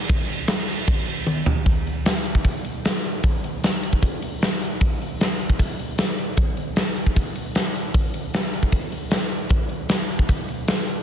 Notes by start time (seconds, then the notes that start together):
0.08 kick, crash
0.28 crash
0.48 snare, crash
0.68 crash
0.87 kick, crash
1.07 crash
1.27 high tom
1.46 floor tom
1.66 kick, open hi-hat
1.87 open hi-hat
2.06 snare, open hi-hat
2.25 open hi-hat
2.35 kick
2.45 kick, open hi-hat
2.65 open hi-hat
2.85 snare, open hi-hat
3.04 open hi-hat
3.23 kick, open hi-hat
3.44 open hi-hat
3.64 snare, open hi-hat
3.83 open hi-hat
3.93 kick
4.03 kick, open hi-hat
4.22 open hi-hat
4.42 snare, open hi-hat
4.62 open hi-hat
4.81 kick, open hi-hat
5.02 open hi-hat
5.21 snare, open hi-hat
5.41 open hi-hat
5.50 kick
5.59 kick, open hi-hat
5.79 open hi-hat
5.98 snare, open hi-hat
6.18 open hi-hat
6.37 kick, open hi-hat
6.57 open hi-hat
6.76 snare, open hi-hat
6.97 open hi-hat
7.06 kick
7.16 kick, open hi-hat
7.36 open hi-hat
7.55 snare, open hi-hat
7.76 open hi-hat
7.94 kick, open hi-hat
8.14 open hi-hat
8.34 snare, open hi-hat
8.53 open hi-hat
8.63 kick
8.72 kick, open hi-hat
8.92 open hi-hat
9.11 snare, open hi-hat
9.30 open hi-hat
9.49 kick, open hi-hat
9.69 open hi-hat
9.89 snare, open hi-hat
10.09 open hi-hat
10.19 kick
10.29 kick, open hi-hat
10.48 open hi-hat
10.68 snare, open hi-hat
10.88 open hi-hat